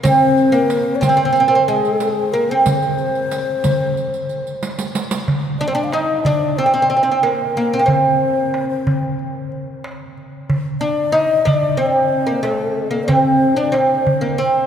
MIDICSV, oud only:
0, 0, Header, 1, 2, 480
1, 0, Start_track
1, 0, Tempo, 652174
1, 30, Time_signature, 4, 2, 24, 8
1, 10794, End_track
2, 0, Start_track
2, 0, Title_t, "Oud"
2, 0, Program_c, 0, 24
2, 26, Note_on_c, 0, 60, 101
2, 381, Note_off_c, 0, 60, 0
2, 384, Note_on_c, 0, 58, 84
2, 743, Note_on_c, 0, 60, 85
2, 760, Note_off_c, 0, 58, 0
2, 794, Note_off_c, 0, 60, 0
2, 803, Note_on_c, 0, 60, 64
2, 851, Note_off_c, 0, 60, 0
2, 860, Note_on_c, 0, 60, 73
2, 913, Note_off_c, 0, 60, 0
2, 921, Note_on_c, 0, 60, 67
2, 967, Note_off_c, 0, 60, 0
2, 975, Note_on_c, 0, 60, 78
2, 1022, Note_off_c, 0, 60, 0
2, 1031, Note_on_c, 0, 60, 67
2, 1080, Note_off_c, 0, 60, 0
2, 1089, Note_on_c, 0, 60, 83
2, 1134, Note_off_c, 0, 60, 0
2, 1142, Note_on_c, 0, 60, 72
2, 1193, Note_off_c, 0, 60, 0
2, 1238, Note_on_c, 0, 56, 79
2, 1716, Note_off_c, 0, 56, 0
2, 1719, Note_on_c, 0, 58, 85
2, 1842, Note_off_c, 0, 58, 0
2, 1849, Note_on_c, 0, 60, 72
2, 3377, Note_off_c, 0, 60, 0
2, 4127, Note_on_c, 0, 62, 88
2, 4175, Note_off_c, 0, 62, 0
2, 4177, Note_on_c, 0, 60, 73
2, 4226, Note_off_c, 0, 60, 0
2, 4230, Note_on_c, 0, 62, 86
2, 4364, Note_off_c, 0, 62, 0
2, 4367, Note_on_c, 0, 63, 90
2, 4604, Note_off_c, 0, 63, 0
2, 4607, Note_on_c, 0, 62, 88
2, 4843, Note_off_c, 0, 62, 0
2, 4846, Note_on_c, 0, 60, 82
2, 4892, Note_off_c, 0, 60, 0
2, 4901, Note_on_c, 0, 60, 61
2, 4949, Note_off_c, 0, 60, 0
2, 4958, Note_on_c, 0, 60, 74
2, 5011, Note_off_c, 0, 60, 0
2, 5022, Note_on_c, 0, 60, 64
2, 5068, Note_off_c, 0, 60, 0
2, 5077, Note_on_c, 0, 60, 67
2, 5118, Note_off_c, 0, 60, 0
2, 5127, Note_on_c, 0, 60, 56
2, 5165, Note_off_c, 0, 60, 0
2, 5174, Note_on_c, 0, 60, 65
2, 5230, Note_off_c, 0, 60, 0
2, 5237, Note_on_c, 0, 60, 60
2, 5289, Note_off_c, 0, 60, 0
2, 5322, Note_on_c, 0, 58, 78
2, 5562, Note_off_c, 0, 58, 0
2, 5571, Note_on_c, 0, 58, 80
2, 5689, Note_off_c, 0, 58, 0
2, 5693, Note_on_c, 0, 60, 72
2, 5735, Note_off_c, 0, 60, 0
2, 5736, Note_on_c, 0, 58, 60
2, 5781, Note_off_c, 0, 58, 0
2, 5784, Note_on_c, 0, 60, 68
2, 6610, Note_off_c, 0, 60, 0
2, 7955, Note_on_c, 0, 62, 87
2, 8178, Note_off_c, 0, 62, 0
2, 8187, Note_on_c, 0, 63, 96
2, 8426, Note_off_c, 0, 63, 0
2, 8429, Note_on_c, 0, 62, 86
2, 8654, Note_off_c, 0, 62, 0
2, 8665, Note_on_c, 0, 60, 87
2, 9024, Note_off_c, 0, 60, 0
2, 9027, Note_on_c, 0, 58, 77
2, 9141, Note_off_c, 0, 58, 0
2, 9147, Note_on_c, 0, 57, 80
2, 9496, Note_off_c, 0, 57, 0
2, 9499, Note_on_c, 0, 58, 74
2, 9623, Note_off_c, 0, 58, 0
2, 9626, Note_on_c, 0, 60, 91
2, 9983, Note_on_c, 0, 62, 82
2, 9999, Note_off_c, 0, 60, 0
2, 10098, Note_on_c, 0, 60, 79
2, 10111, Note_off_c, 0, 62, 0
2, 10457, Note_off_c, 0, 60, 0
2, 10460, Note_on_c, 0, 58, 70
2, 10586, Note_on_c, 0, 60, 87
2, 10589, Note_off_c, 0, 58, 0
2, 10794, Note_off_c, 0, 60, 0
2, 10794, End_track
0, 0, End_of_file